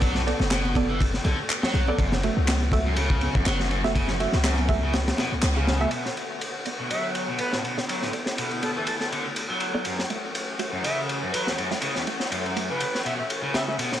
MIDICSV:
0, 0, Header, 1, 7, 480
1, 0, Start_track
1, 0, Key_signature, 2, "minor"
1, 0, Tempo, 491803
1, 21, Time_signature, 4, 2, 24, 8
1, 13664, End_track
2, 0, Start_track
2, 0, Title_t, "Flute"
2, 0, Program_c, 0, 73
2, 6735, Note_on_c, 0, 76, 84
2, 6899, Note_off_c, 0, 76, 0
2, 7209, Note_on_c, 0, 71, 83
2, 7376, Note_off_c, 0, 71, 0
2, 8415, Note_on_c, 0, 69, 84
2, 8502, Note_off_c, 0, 69, 0
2, 8553, Note_on_c, 0, 69, 68
2, 8622, Note_off_c, 0, 69, 0
2, 8655, Note_on_c, 0, 69, 79
2, 8742, Note_off_c, 0, 69, 0
2, 8783, Note_on_c, 0, 69, 70
2, 8858, Note_off_c, 0, 69, 0
2, 10578, Note_on_c, 0, 76, 85
2, 10740, Note_off_c, 0, 76, 0
2, 11051, Note_on_c, 0, 71, 83
2, 11217, Note_off_c, 0, 71, 0
2, 12391, Note_on_c, 0, 71, 77
2, 12719, Note_off_c, 0, 71, 0
2, 12738, Note_on_c, 0, 76, 78
2, 12823, Note_off_c, 0, 76, 0
2, 12869, Note_on_c, 0, 76, 68
2, 12940, Note_off_c, 0, 76, 0
2, 13219, Note_on_c, 0, 76, 83
2, 13304, Note_off_c, 0, 76, 0
2, 13353, Note_on_c, 0, 76, 69
2, 13422, Note_off_c, 0, 76, 0
2, 13664, End_track
3, 0, Start_track
3, 0, Title_t, "Synth stab"
3, 0, Program_c, 1, 62
3, 262, Note_on_c, 1, 69, 67
3, 264, Note_on_c, 1, 59, 71
3, 265, Note_on_c, 1, 74, 78
3, 411, Note_off_c, 1, 59, 0
3, 411, Note_off_c, 1, 69, 0
3, 412, Note_off_c, 1, 74, 0
3, 746, Note_on_c, 1, 59, 78
3, 746, Note_on_c, 1, 74, 88
3, 747, Note_on_c, 1, 69, 74
3, 892, Note_off_c, 1, 59, 0
3, 892, Note_off_c, 1, 74, 0
3, 893, Note_off_c, 1, 69, 0
3, 1838, Note_on_c, 1, 74, 110
3, 1839, Note_on_c, 1, 59, 98
3, 1839, Note_on_c, 1, 69, 91
3, 1931, Note_off_c, 1, 74, 0
3, 1932, Note_off_c, 1, 59, 0
3, 1932, Note_off_c, 1, 69, 0
3, 2185, Note_on_c, 1, 66, 64
3, 2186, Note_on_c, 1, 76, 75
3, 2187, Note_on_c, 1, 57, 74
3, 2332, Note_off_c, 1, 66, 0
3, 2332, Note_off_c, 1, 76, 0
3, 2333, Note_off_c, 1, 57, 0
3, 2662, Note_on_c, 1, 66, 73
3, 2663, Note_on_c, 1, 57, 79
3, 2663, Note_on_c, 1, 76, 86
3, 2810, Note_off_c, 1, 66, 0
3, 2811, Note_off_c, 1, 57, 0
3, 2811, Note_off_c, 1, 76, 0
3, 3751, Note_on_c, 1, 57, 101
3, 3751, Note_on_c, 1, 66, 88
3, 3752, Note_on_c, 1, 76, 108
3, 3883, Note_off_c, 1, 57, 0
3, 3883, Note_off_c, 1, 66, 0
3, 3883, Note_off_c, 1, 76, 0
3, 4101, Note_on_c, 1, 76, 78
3, 4102, Note_on_c, 1, 57, 68
3, 4102, Note_on_c, 1, 66, 66
3, 4250, Note_off_c, 1, 57, 0
3, 4250, Note_off_c, 1, 76, 0
3, 4251, Note_off_c, 1, 66, 0
3, 4577, Note_on_c, 1, 57, 78
3, 4577, Note_on_c, 1, 76, 89
3, 4578, Note_on_c, 1, 66, 72
3, 4728, Note_off_c, 1, 57, 0
3, 4728, Note_off_c, 1, 66, 0
3, 4728, Note_off_c, 1, 76, 0
3, 5668, Note_on_c, 1, 57, 99
3, 5669, Note_on_c, 1, 66, 86
3, 5670, Note_on_c, 1, 76, 108
3, 5766, Note_off_c, 1, 57, 0
3, 5767, Note_off_c, 1, 66, 0
3, 5767, Note_off_c, 1, 76, 0
3, 6020, Note_on_c, 1, 59, 66
3, 6020, Note_on_c, 1, 69, 61
3, 6020, Note_on_c, 1, 74, 72
3, 6169, Note_off_c, 1, 59, 0
3, 6169, Note_off_c, 1, 69, 0
3, 6169, Note_off_c, 1, 74, 0
3, 6504, Note_on_c, 1, 69, 71
3, 6504, Note_on_c, 1, 74, 81
3, 6505, Note_on_c, 1, 59, 76
3, 6651, Note_off_c, 1, 74, 0
3, 6652, Note_off_c, 1, 59, 0
3, 6652, Note_off_c, 1, 69, 0
3, 7589, Note_on_c, 1, 69, 85
3, 7591, Note_on_c, 1, 59, 91
3, 7592, Note_on_c, 1, 74, 100
3, 7721, Note_off_c, 1, 69, 0
3, 7722, Note_off_c, 1, 59, 0
3, 7723, Note_off_c, 1, 74, 0
3, 7941, Note_on_c, 1, 59, 65
3, 7941, Note_on_c, 1, 69, 60
3, 7941, Note_on_c, 1, 74, 76
3, 8090, Note_off_c, 1, 59, 0
3, 8090, Note_off_c, 1, 69, 0
3, 8090, Note_off_c, 1, 74, 0
3, 8420, Note_on_c, 1, 59, 77
3, 8420, Note_on_c, 1, 69, 69
3, 8420, Note_on_c, 1, 74, 84
3, 8569, Note_off_c, 1, 59, 0
3, 8569, Note_off_c, 1, 69, 0
3, 8570, Note_off_c, 1, 74, 0
3, 9510, Note_on_c, 1, 59, 94
3, 9511, Note_on_c, 1, 69, 85
3, 9511, Note_on_c, 1, 74, 101
3, 9607, Note_off_c, 1, 59, 0
3, 9608, Note_off_c, 1, 69, 0
3, 9608, Note_off_c, 1, 74, 0
3, 9859, Note_on_c, 1, 66, 61
3, 9860, Note_on_c, 1, 76, 76
3, 9861, Note_on_c, 1, 57, 66
3, 10009, Note_off_c, 1, 66, 0
3, 10009, Note_off_c, 1, 76, 0
3, 10010, Note_off_c, 1, 57, 0
3, 10337, Note_on_c, 1, 57, 76
3, 10339, Note_on_c, 1, 66, 70
3, 10339, Note_on_c, 1, 76, 87
3, 10488, Note_off_c, 1, 57, 0
3, 10489, Note_off_c, 1, 66, 0
3, 10489, Note_off_c, 1, 76, 0
3, 11432, Note_on_c, 1, 76, 103
3, 11433, Note_on_c, 1, 66, 84
3, 11434, Note_on_c, 1, 57, 93
3, 11563, Note_off_c, 1, 66, 0
3, 11563, Note_off_c, 1, 76, 0
3, 11564, Note_off_c, 1, 57, 0
3, 11783, Note_on_c, 1, 57, 69
3, 11783, Note_on_c, 1, 66, 62
3, 11784, Note_on_c, 1, 76, 74
3, 11931, Note_off_c, 1, 57, 0
3, 11931, Note_off_c, 1, 66, 0
3, 11931, Note_off_c, 1, 76, 0
3, 12263, Note_on_c, 1, 57, 75
3, 12265, Note_on_c, 1, 66, 69
3, 12265, Note_on_c, 1, 76, 82
3, 12411, Note_off_c, 1, 57, 0
3, 12412, Note_off_c, 1, 66, 0
3, 12412, Note_off_c, 1, 76, 0
3, 13353, Note_on_c, 1, 57, 91
3, 13354, Note_on_c, 1, 66, 90
3, 13354, Note_on_c, 1, 76, 101
3, 13449, Note_off_c, 1, 57, 0
3, 13449, Note_off_c, 1, 66, 0
3, 13449, Note_off_c, 1, 76, 0
3, 13664, End_track
4, 0, Start_track
4, 0, Title_t, "String section"
4, 0, Program_c, 2, 48
4, 0, Note_on_c, 2, 50, 71
4, 0, Note_on_c, 2, 57, 67
4, 0, Note_on_c, 2, 59, 68
4, 0, Note_on_c, 2, 66, 81
4, 1903, Note_off_c, 2, 59, 0
4, 1904, Note_off_c, 2, 66, 0
4, 1905, Note_off_c, 2, 50, 0
4, 1941, Note_on_c, 2, 61, 72
4, 1943, Note_on_c, 2, 52, 75
4, 1943, Note_on_c, 2, 66, 82
4, 5743, Note_off_c, 2, 57, 0
4, 5743, Note_off_c, 2, 61, 0
4, 5743, Note_off_c, 2, 66, 0
4, 5744, Note_off_c, 2, 52, 0
4, 5781, Note_on_c, 2, 57, 59
4, 5783, Note_on_c, 2, 50, 68
4, 5783, Note_on_c, 2, 59, 62
4, 5784, Note_on_c, 2, 66, 74
4, 7683, Note_off_c, 2, 66, 0
4, 7704, Note_on_c, 2, 64, 77
4, 9584, Note_off_c, 2, 50, 0
4, 9584, Note_off_c, 2, 59, 0
4, 9603, Note_off_c, 2, 64, 0
4, 9622, Note_on_c, 2, 61, 62
4, 9625, Note_on_c, 2, 52, 68
4, 9626, Note_on_c, 2, 66, 75
4, 13422, Note_off_c, 2, 57, 0
4, 13423, Note_off_c, 2, 61, 0
4, 13425, Note_off_c, 2, 52, 0
4, 13464, Note_on_c, 2, 57, 63
4, 13465, Note_on_c, 2, 50, 69
4, 13465, Note_on_c, 2, 59, 66
4, 13664, Note_off_c, 2, 50, 0
4, 13664, Note_off_c, 2, 57, 0
4, 13664, Note_off_c, 2, 59, 0
4, 13664, Note_off_c, 2, 66, 0
4, 13664, End_track
5, 0, Start_track
5, 0, Title_t, "Overdriven electric guitar"
5, 0, Program_c, 3, 29
5, 24, Note_on_c, 3, 54, 80
5, 140, Note_off_c, 3, 54, 0
5, 154, Note_on_c, 3, 45, 73
5, 206, Note_off_c, 3, 45, 0
5, 506, Note_on_c, 3, 47, 81
5, 861, Note_off_c, 3, 47, 0
5, 874, Note_on_c, 3, 52, 68
5, 977, Note_off_c, 3, 52, 0
5, 1225, Note_on_c, 3, 50, 71
5, 1347, Note_off_c, 3, 50, 0
5, 1596, Note_on_c, 3, 54, 69
5, 1932, Note_off_c, 3, 54, 0
5, 1945, Note_on_c, 3, 42, 79
5, 2067, Note_off_c, 3, 42, 0
5, 2795, Note_on_c, 3, 42, 75
5, 2892, Note_off_c, 3, 42, 0
5, 2901, Note_on_c, 3, 49, 80
5, 3259, Note_off_c, 3, 49, 0
5, 3273, Note_on_c, 3, 42, 71
5, 3361, Note_off_c, 3, 42, 0
5, 3384, Note_on_c, 3, 54, 106
5, 3500, Note_off_c, 3, 54, 0
5, 3514, Note_on_c, 3, 40, 71
5, 3602, Note_off_c, 3, 40, 0
5, 3626, Note_on_c, 3, 42, 80
5, 3730, Note_off_c, 3, 42, 0
5, 3864, Note_on_c, 3, 49, 83
5, 3980, Note_off_c, 3, 49, 0
5, 3996, Note_on_c, 3, 40, 74
5, 4047, Note_off_c, 3, 40, 0
5, 4340, Note_on_c, 3, 42, 83
5, 4698, Note_off_c, 3, 42, 0
5, 4711, Note_on_c, 3, 49, 74
5, 4815, Note_off_c, 3, 49, 0
5, 5061, Note_on_c, 3, 47, 75
5, 5185, Note_off_c, 3, 47, 0
5, 5431, Note_on_c, 3, 49, 72
5, 5770, Note_off_c, 3, 49, 0
5, 5778, Note_on_c, 3, 47, 76
5, 5903, Note_off_c, 3, 47, 0
5, 6634, Note_on_c, 3, 47, 64
5, 6732, Note_off_c, 3, 47, 0
5, 6738, Note_on_c, 3, 54, 72
5, 7097, Note_off_c, 3, 54, 0
5, 7109, Note_on_c, 3, 47, 66
5, 7199, Note_off_c, 3, 47, 0
5, 7222, Note_on_c, 3, 59, 94
5, 7339, Note_off_c, 3, 59, 0
5, 7353, Note_on_c, 3, 45, 63
5, 7442, Note_off_c, 3, 45, 0
5, 7460, Note_on_c, 3, 47, 73
5, 7567, Note_off_c, 3, 47, 0
5, 7707, Note_on_c, 3, 54, 75
5, 7821, Note_off_c, 3, 54, 0
5, 7837, Note_on_c, 3, 45, 68
5, 7888, Note_off_c, 3, 45, 0
5, 8184, Note_on_c, 3, 47, 74
5, 8540, Note_off_c, 3, 47, 0
5, 8554, Note_on_c, 3, 52, 67
5, 8657, Note_off_c, 3, 52, 0
5, 8906, Note_on_c, 3, 50, 70
5, 9028, Note_off_c, 3, 50, 0
5, 9272, Note_on_c, 3, 54, 69
5, 9611, Note_off_c, 3, 54, 0
5, 9622, Note_on_c, 3, 42, 75
5, 9746, Note_off_c, 3, 42, 0
5, 10470, Note_on_c, 3, 42, 67
5, 10569, Note_off_c, 3, 42, 0
5, 10579, Note_on_c, 3, 49, 77
5, 10938, Note_off_c, 3, 49, 0
5, 10955, Note_on_c, 3, 42, 68
5, 11042, Note_off_c, 3, 42, 0
5, 11064, Note_on_c, 3, 54, 92
5, 11180, Note_off_c, 3, 54, 0
5, 11194, Note_on_c, 3, 40, 68
5, 11282, Note_off_c, 3, 40, 0
5, 11304, Note_on_c, 3, 42, 76
5, 11409, Note_off_c, 3, 42, 0
5, 11542, Note_on_c, 3, 49, 77
5, 11659, Note_off_c, 3, 49, 0
5, 11673, Note_on_c, 3, 40, 67
5, 11726, Note_off_c, 3, 40, 0
5, 12021, Note_on_c, 3, 42, 74
5, 12379, Note_off_c, 3, 42, 0
5, 12394, Note_on_c, 3, 49, 67
5, 12497, Note_off_c, 3, 49, 0
5, 12741, Note_on_c, 3, 47, 68
5, 12865, Note_off_c, 3, 47, 0
5, 13109, Note_on_c, 3, 49, 66
5, 13449, Note_off_c, 3, 49, 0
5, 13460, Note_on_c, 3, 47, 73
5, 13584, Note_off_c, 3, 47, 0
5, 13664, End_track
6, 0, Start_track
6, 0, Title_t, "808-style bass"
6, 0, Program_c, 4, 38
6, 0, Note_on_c, 4, 35, 98
6, 326, Note_off_c, 4, 35, 0
6, 391, Note_on_c, 4, 30, 87
6, 1166, Note_off_c, 4, 30, 0
6, 1219, Note_on_c, 4, 35, 97
6, 1310, Note_off_c, 4, 35, 0
6, 1699, Note_on_c, 4, 35, 92
6, 1871, Note_off_c, 4, 35, 0
6, 1937, Note_on_c, 4, 30, 99
6, 2244, Note_off_c, 4, 30, 0
6, 2311, Note_on_c, 4, 37, 92
6, 3206, Note_off_c, 4, 37, 0
6, 3270, Note_on_c, 4, 30, 89
6, 3346, Note_off_c, 4, 30, 0
6, 3382, Note_on_c, 4, 30, 107
6, 4166, Note_off_c, 4, 30, 0
6, 4231, Note_on_c, 4, 37, 90
6, 5006, Note_off_c, 4, 37, 0
6, 5190, Note_on_c, 4, 37, 45
6, 5278, Note_off_c, 4, 37, 0
6, 5297, Note_on_c, 4, 37, 93
6, 5724, Note_off_c, 4, 37, 0
6, 13664, End_track
7, 0, Start_track
7, 0, Title_t, "Drums"
7, 15, Note_on_c, 9, 51, 94
7, 17, Note_on_c, 9, 36, 108
7, 17, Note_on_c, 9, 60, 45
7, 113, Note_off_c, 9, 51, 0
7, 115, Note_off_c, 9, 36, 0
7, 115, Note_off_c, 9, 60, 0
7, 145, Note_on_c, 9, 38, 39
7, 162, Note_on_c, 9, 64, 67
7, 243, Note_off_c, 9, 38, 0
7, 259, Note_off_c, 9, 64, 0
7, 268, Note_on_c, 9, 51, 68
7, 366, Note_off_c, 9, 51, 0
7, 385, Note_on_c, 9, 60, 69
7, 395, Note_on_c, 9, 38, 51
7, 483, Note_off_c, 9, 60, 0
7, 493, Note_off_c, 9, 38, 0
7, 493, Note_on_c, 9, 51, 88
7, 498, Note_on_c, 9, 38, 121
7, 500, Note_on_c, 9, 39, 99
7, 591, Note_off_c, 9, 51, 0
7, 596, Note_off_c, 9, 38, 0
7, 598, Note_off_c, 9, 39, 0
7, 634, Note_on_c, 9, 51, 42
7, 634, Note_on_c, 9, 63, 96
7, 731, Note_off_c, 9, 63, 0
7, 732, Note_off_c, 9, 51, 0
7, 736, Note_on_c, 9, 36, 91
7, 741, Note_on_c, 9, 51, 64
7, 833, Note_off_c, 9, 36, 0
7, 839, Note_off_c, 9, 51, 0
7, 880, Note_on_c, 9, 60, 56
7, 977, Note_off_c, 9, 60, 0
7, 982, Note_on_c, 9, 36, 99
7, 988, Note_on_c, 9, 51, 84
7, 1079, Note_off_c, 9, 36, 0
7, 1086, Note_off_c, 9, 51, 0
7, 1113, Note_on_c, 9, 38, 39
7, 1210, Note_off_c, 9, 38, 0
7, 1215, Note_on_c, 9, 51, 61
7, 1229, Note_on_c, 9, 63, 58
7, 1231, Note_on_c, 9, 60, 78
7, 1313, Note_off_c, 9, 51, 0
7, 1326, Note_off_c, 9, 63, 0
7, 1329, Note_off_c, 9, 60, 0
7, 1456, Note_on_c, 9, 51, 78
7, 1462, Note_on_c, 9, 39, 101
7, 1554, Note_off_c, 9, 51, 0
7, 1559, Note_off_c, 9, 39, 0
7, 1594, Note_on_c, 9, 38, 112
7, 1691, Note_off_c, 9, 38, 0
7, 1702, Note_on_c, 9, 60, 54
7, 1705, Note_on_c, 9, 64, 67
7, 1706, Note_on_c, 9, 51, 61
7, 1800, Note_off_c, 9, 60, 0
7, 1803, Note_off_c, 9, 64, 0
7, 1804, Note_off_c, 9, 51, 0
7, 1832, Note_on_c, 9, 63, 88
7, 1929, Note_off_c, 9, 63, 0
7, 1938, Note_on_c, 9, 36, 113
7, 1942, Note_on_c, 9, 51, 85
7, 2035, Note_off_c, 9, 36, 0
7, 2040, Note_off_c, 9, 51, 0
7, 2069, Note_on_c, 9, 38, 50
7, 2074, Note_on_c, 9, 60, 77
7, 2076, Note_on_c, 9, 64, 79
7, 2167, Note_off_c, 9, 38, 0
7, 2171, Note_off_c, 9, 60, 0
7, 2174, Note_off_c, 9, 64, 0
7, 2179, Note_on_c, 9, 51, 64
7, 2276, Note_off_c, 9, 51, 0
7, 2421, Note_on_c, 9, 39, 90
7, 2421, Note_on_c, 9, 51, 88
7, 2423, Note_on_c, 9, 38, 119
7, 2518, Note_off_c, 9, 51, 0
7, 2519, Note_off_c, 9, 39, 0
7, 2520, Note_off_c, 9, 38, 0
7, 2542, Note_on_c, 9, 63, 89
7, 2550, Note_on_c, 9, 60, 53
7, 2640, Note_off_c, 9, 63, 0
7, 2648, Note_off_c, 9, 60, 0
7, 2652, Note_on_c, 9, 36, 88
7, 2664, Note_on_c, 9, 51, 73
7, 2750, Note_off_c, 9, 36, 0
7, 2761, Note_off_c, 9, 51, 0
7, 2893, Note_on_c, 9, 51, 89
7, 2906, Note_on_c, 9, 60, 79
7, 2991, Note_off_c, 9, 51, 0
7, 3003, Note_off_c, 9, 60, 0
7, 3026, Note_on_c, 9, 36, 96
7, 3123, Note_off_c, 9, 36, 0
7, 3134, Note_on_c, 9, 51, 60
7, 3149, Note_on_c, 9, 63, 65
7, 3231, Note_off_c, 9, 51, 0
7, 3246, Note_off_c, 9, 63, 0
7, 3270, Note_on_c, 9, 36, 103
7, 3368, Note_off_c, 9, 36, 0
7, 3376, Note_on_c, 9, 51, 80
7, 3378, Note_on_c, 9, 39, 98
7, 3379, Note_on_c, 9, 38, 101
7, 3384, Note_on_c, 9, 60, 54
7, 3474, Note_off_c, 9, 51, 0
7, 3475, Note_off_c, 9, 39, 0
7, 3477, Note_off_c, 9, 38, 0
7, 3481, Note_off_c, 9, 60, 0
7, 3511, Note_on_c, 9, 38, 60
7, 3609, Note_off_c, 9, 38, 0
7, 3619, Note_on_c, 9, 51, 67
7, 3716, Note_off_c, 9, 51, 0
7, 3751, Note_on_c, 9, 38, 39
7, 3752, Note_on_c, 9, 60, 86
7, 3757, Note_on_c, 9, 63, 85
7, 3849, Note_off_c, 9, 38, 0
7, 3850, Note_off_c, 9, 60, 0
7, 3854, Note_off_c, 9, 63, 0
7, 3860, Note_on_c, 9, 36, 106
7, 3861, Note_on_c, 9, 51, 100
7, 3957, Note_off_c, 9, 36, 0
7, 3959, Note_off_c, 9, 51, 0
7, 3980, Note_on_c, 9, 38, 39
7, 4003, Note_on_c, 9, 64, 77
7, 4078, Note_off_c, 9, 38, 0
7, 4100, Note_on_c, 9, 51, 66
7, 4101, Note_off_c, 9, 64, 0
7, 4198, Note_off_c, 9, 51, 0
7, 4221, Note_on_c, 9, 38, 44
7, 4233, Note_on_c, 9, 60, 53
7, 4319, Note_off_c, 9, 38, 0
7, 4331, Note_off_c, 9, 60, 0
7, 4334, Note_on_c, 9, 38, 127
7, 4338, Note_on_c, 9, 39, 98
7, 4343, Note_on_c, 9, 51, 90
7, 4431, Note_off_c, 9, 38, 0
7, 4436, Note_off_c, 9, 39, 0
7, 4440, Note_off_c, 9, 51, 0
7, 4468, Note_on_c, 9, 51, 45
7, 4479, Note_on_c, 9, 63, 88
7, 4566, Note_off_c, 9, 51, 0
7, 4575, Note_on_c, 9, 36, 96
7, 4576, Note_off_c, 9, 63, 0
7, 4579, Note_on_c, 9, 51, 64
7, 4587, Note_on_c, 9, 60, 82
7, 4672, Note_off_c, 9, 36, 0
7, 4677, Note_off_c, 9, 51, 0
7, 4684, Note_off_c, 9, 60, 0
7, 4816, Note_on_c, 9, 51, 74
7, 4819, Note_on_c, 9, 38, 98
7, 4914, Note_off_c, 9, 51, 0
7, 4917, Note_off_c, 9, 38, 0
7, 4956, Note_on_c, 9, 51, 74
7, 4957, Note_on_c, 9, 38, 114
7, 5053, Note_off_c, 9, 51, 0
7, 5055, Note_off_c, 9, 38, 0
7, 5056, Note_on_c, 9, 51, 79
7, 5058, Note_on_c, 9, 38, 102
7, 5061, Note_on_c, 9, 60, 59
7, 5069, Note_on_c, 9, 63, 64
7, 5153, Note_off_c, 9, 51, 0
7, 5156, Note_off_c, 9, 38, 0
7, 5158, Note_off_c, 9, 60, 0
7, 5166, Note_off_c, 9, 63, 0
7, 5295, Note_on_c, 9, 38, 98
7, 5295, Note_on_c, 9, 39, 101
7, 5295, Note_on_c, 9, 51, 77
7, 5393, Note_off_c, 9, 38, 0
7, 5393, Note_off_c, 9, 39, 0
7, 5393, Note_off_c, 9, 51, 0
7, 5435, Note_on_c, 9, 60, 78
7, 5532, Note_off_c, 9, 60, 0
7, 5538, Note_on_c, 9, 38, 94
7, 5543, Note_on_c, 9, 64, 76
7, 5547, Note_on_c, 9, 51, 73
7, 5636, Note_off_c, 9, 38, 0
7, 5640, Note_off_c, 9, 64, 0
7, 5644, Note_off_c, 9, 51, 0
7, 5668, Note_on_c, 9, 63, 83
7, 5765, Note_off_c, 9, 63, 0
7, 5766, Note_on_c, 9, 51, 79
7, 5864, Note_off_c, 9, 51, 0
7, 5911, Note_on_c, 9, 38, 47
7, 6009, Note_off_c, 9, 38, 0
7, 6021, Note_on_c, 9, 51, 63
7, 6119, Note_off_c, 9, 51, 0
7, 6259, Note_on_c, 9, 51, 74
7, 6356, Note_off_c, 9, 51, 0
7, 6495, Note_on_c, 9, 51, 68
7, 6592, Note_off_c, 9, 51, 0
7, 6739, Note_on_c, 9, 51, 76
7, 6837, Note_off_c, 9, 51, 0
7, 6977, Note_on_c, 9, 51, 63
7, 7074, Note_off_c, 9, 51, 0
7, 7208, Note_on_c, 9, 51, 73
7, 7305, Note_off_c, 9, 51, 0
7, 7346, Note_on_c, 9, 38, 54
7, 7444, Note_off_c, 9, 38, 0
7, 7463, Note_on_c, 9, 51, 63
7, 7561, Note_off_c, 9, 51, 0
7, 7590, Note_on_c, 9, 38, 38
7, 7687, Note_off_c, 9, 38, 0
7, 7702, Note_on_c, 9, 51, 76
7, 7800, Note_off_c, 9, 51, 0
7, 7829, Note_on_c, 9, 38, 33
7, 7927, Note_off_c, 9, 38, 0
7, 7936, Note_on_c, 9, 51, 54
7, 8033, Note_off_c, 9, 51, 0
7, 8063, Note_on_c, 9, 38, 46
7, 8160, Note_off_c, 9, 38, 0
7, 8179, Note_on_c, 9, 51, 80
7, 8277, Note_off_c, 9, 51, 0
7, 8308, Note_on_c, 9, 51, 37
7, 8405, Note_off_c, 9, 51, 0
7, 8418, Note_on_c, 9, 51, 69
7, 8516, Note_off_c, 9, 51, 0
7, 8654, Note_on_c, 9, 51, 85
7, 8752, Note_off_c, 9, 51, 0
7, 8788, Note_on_c, 9, 38, 33
7, 8886, Note_off_c, 9, 38, 0
7, 8905, Note_on_c, 9, 51, 60
7, 9003, Note_off_c, 9, 51, 0
7, 9136, Note_on_c, 9, 51, 73
7, 9234, Note_off_c, 9, 51, 0
7, 9372, Note_on_c, 9, 51, 63
7, 9470, Note_off_c, 9, 51, 0
7, 9611, Note_on_c, 9, 51, 77
7, 9709, Note_off_c, 9, 51, 0
7, 9749, Note_on_c, 9, 38, 44
7, 9847, Note_off_c, 9, 38, 0
7, 9857, Note_on_c, 9, 51, 54
7, 9955, Note_off_c, 9, 51, 0
7, 10100, Note_on_c, 9, 51, 79
7, 10198, Note_off_c, 9, 51, 0
7, 10338, Note_on_c, 9, 51, 66
7, 10436, Note_off_c, 9, 51, 0
7, 10582, Note_on_c, 9, 51, 80
7, 10680, Note_off_c, 9, 51, 0
7, 10826, Note_on_c, 9, 51, 54
7, 10924, Note_off_c, 9, 51, 0
7, 11065, Note_on_c, 9, 51, 88
7, 11163, Note_off_c, 9, 51, 0
7, 11196, Note_on_c, 9, 38, 54
7, 11293, Note_off_c, 9, 38, 0
7, 11305, Note_on_c, 9, 51, 61
7, 11402, Note_off_c, 9, 51, 0
7, 11427, Note_on_c, 9, 38, 37
7, 11524, Note_off_c, 9, 38, 0
7, 11533, Note_on_c, 9, 51, 80
7, 11631, Note_off_c, 9, 51, 0
7, 11668, Note_on_c, 9, 38, 36
7, 11765, Note_off_c, 9, 38, 0
7, 11780, Note_on_c, 9, 51, 58
7, 11877, Note_off_c, 9, 51, 0
7, 11907, Note_on_c, 9, 38, 44
7, 12005, Note_off_c, 9, 38, 0
7, 12023, Note_on_c, 9, 51, 81
7, 12120, Note_off_c, 9, 51, 0
7, 12160, Note_on_c, 9, 51, 39
7, 12257, Note_off_c, 9, 51, 0
7, 12264, Note_on_c, 9, 51, 66
7, 12361, Note_off_c, 9, 51, 0
7, 12497, Note_on_c, 9, 51, 81
7, 12595, Note_off_c, 9, 51, 0
7, 12637, Note_on_c, 9, 38, 39
7, 12735, Note_off_c, 9, 38, 0
7, 12745, Note_on_c, 9, 51, 66
7, 12843, Note_off_c, 9, 51, 0
7, 12981, Note_on_c, 9, 51, 76
7, 13079, Note_off_c, 9, 51, 0
7, 13217, Note_on_c, 9, 38, 95
7, 13222, Note_on_c, 9, 51, 67
7, 13315, Note_off_c, 9, 38, 0
7, 13320, Note_off_c, 9, 51, 0
7, 13459, Note_on_c, 9, 51, 86
7, 13556, Note_off_c, 9, 51, 0
7, 13589, Note_on_c, 9, 38, 47
7, 13664, Note_off_c, 9, 38, 0
7, 13664, End_track
0, 0, End_of_file